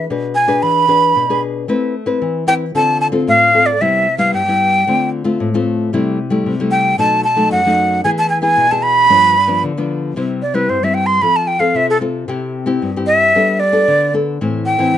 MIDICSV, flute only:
0, 0, Header, 1, 2, 480
1, 0, Start_track
1, 0, Key_signature, 0, "minor"
1, 0, Tempo, 530035
1, 1530, Time_signature, 4, 2, 24, 8
1, 9205, Key_signature, 0, "major"
1, 13565, End_track
2, 0, Start_track
2, 0, Title_t, "Flute"
2, 0, Program_c, 0, 73
2, 316, Note_on_c, 0, 80, 94
2, 567, Note_on_c, 0, 83, 97
2, 581, Note_off_c, 0, 80, 0
2, 1288, Note_off_c, 0, 83, 0
2, 2245, Note_on_c, 0, 79, 107
2, 2299, Note_off_c, 0, 79, 0
2, 2496, Note_on_c, 0, 81, 100
2, 2716, Note_off_c, 0, 81, 0
2, 2726, Note_on_c, 0, 81, 100
2, 2780, Note_off_c, 0, 81, 0
2, 2975, Note_on_c, 0, 77, 103
2, 3315, Note_on_c, 0, 74, 84
2, 3328, Note_off_c, 0, 77, 0
2, 3452, Note_on_c, 0, 76, 82
2, 3466, Note_off_c, 0, 74, 0
2, 3782, Note_off_c, 0, 76, 0
2, 3787, Note_on_c, 0, 77, 86
2, 3908, Note_off_c, 0, 77, 0
2, 3926, Note_on_c, 0, 79, 87
2, 4610, Note_off_c, 0, 79, 0
2, 6078, Note_on_c, 0, 79, 88
2, 6305, Note_off_c, 0, 79, 0
2, 6329, Note_on_c, 0, 81, 102
2, 6551, Note_off_c, 0, 81, 0
2, 6559, Note_on_c, 0, 81, 84
2, 6785, Note_off_c, 0, 81, 0
2, 6808, Note_on_c, 0, 78, 97
2, 7253, Note_off_c, 0, 78, 0
2, 7283, Note_on_c, 0, 80, 94
2, 7338, Note_off_c, 0, 80, 0
2, 7413, Note_on_c, 0, 81, 88
2, 7509, Note_off_c, 0, 81, 0
2, 7515, Note_on_c, 0, 80, 73
2, 7616, Note_off_c, 0, 80, 0
2, 7621, Note_on_c, 0, 80, 91
2, 7891, Note_on_c, 0, 81, 92
2, 7904, Note_off_c, 0, 80, 0
2, 7994, Note_on_c, 0, 83, 113
2, 8007, Note_off_c, 0, 81, 0
2, 8719, Note_off_c, 0, 83, 0
2, 9437, Note_on_c, 0, 74, 65
2, 9551, Note_on_c, 0, 71, 67
2, 9564, Note_off_c, 0, 74, 0
2, 9686, Note_on_c, 0, 72, 69
2, 9699, Note_off_c, 0, 71, 0
2, 9816, Note_on_c, 0, 76, 65
2, 9829, Note_off_c, 0, 72, 0
2, 9909, Note_on_c, 0, 79, 90
2, 9923, Note_off_c, 0, 76, 0
2, 10019, Note_on_c, 0, 84, 88
2, 10032, Note_off_c, 0, 79, 0
2, 10157, Note_on_c, 0, 83, 85
2, 10171, Note_off_c, 0, 84, 0
2, 10289, Note_on_c, 0, 81, 82
2, 10303, Note_off_c, 0, 83, 0
2, 10390, Note_on_c, 0, 79, 82
2, 10404, Note_off_c, 0, 81, 0
2, 10503, Note_on_c, 0, 77, 80
2, 10516, Note_off_c, 0, 79, 0
2, 10650, Note_on_c, 0, 76, 84
2, 10664, Note_off_c, 0, 77, 0
2, 10768, Note_off_c, 0, 76, 0
2, 10776, Note_on_c, 0, 69, 73
2, 10845, Note_off_c, 0, 69, 0
2, 11831, Note_on_c, 0, 76, 91
2, 12313, Note_on_c, 0, 74, 81
2, 12327, Note_off_c, 0, 76, 0
2, 12799, Note_off_c, 0, 74, 0
2, 13273, Note_on_c, 0, 79, 90
2, 13565, Note_off_c, 0, 79, 0
2, 13565, End_track
0, 0, End_of_file